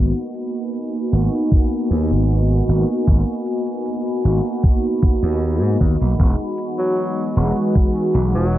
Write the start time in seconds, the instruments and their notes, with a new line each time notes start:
Already playing: slap bass G#1, analog polysynth A#3 B3 D#4, ambient pad F#4 D#5 G#5 B5
0.00 analog polysynth F#4
0.34 closed hi-hat
0.55 closed hi-hat
0.73 closed hi-hat
1.11 slap bass G#1, analog polysynth A#3 B3 D#4 F#4, closed hi-hat
1.33 closed hi-hat
1.51 kick, closed hi-hat
1.72 closed hi-hat
1.90 slap bass D#2, closed hi-hat
2.11 slap bass G#1, closed hi-hat
2.30 closed hi-hat
2.68 slap bass G#1, analog polysynth A#3 B3 D#4 F#4, closed hi-hat
2.89 closed hi-hat
3.07 slap bass G#1, analog polysynth A#3 B3 D#4 F#4, kick, closed hi-hat
3.46 closed hi-hat
3.67 closed hi-hat
3.85 closed hi-hat
4.06 closed hi-hat
4.24 slap bass G#1, analog polysynth A#3 B3 D#4 F#4, closed hi-hat
4.44 closed hi-hat
4.63 kick, closed hi-hat
4.83 closed hi-hat
5.02 kick, closed hi-hat
5.22 slap bass D#2, analog polysynth A#3 B3 D#4 F#4, closed hi-hat
5.41 closed hi-hat
5.61 slap bass G#2, analog polysynth A#3 B3 D#4 F#4
5.80 slap bass D#2, kick, closed hi-hat
6.00 slap bass B1, closed hi-hat
6.18 slap bass E1, ambient pad E3 G#5, analog polysynth G#3 B3 D#4 F#4, kick, closed hi-hat
6.58 closed hi-hat
6.78 tenor saxophone F#3, closed hi-hat
6.97 closed hi-hat
7.35 slap bass E1, analog polysynth G#3 B3 D#4 F#4, closed hi-hat
7.56 closed hi-hat
7.75 kick, closed hi-hat
7.96 closed hi-hat
8.14 slap bass B1, closed hi-hat
8.34 slap bass E1, tenor saxophone F#3, closed hi-hat
8.53 closed hi-hat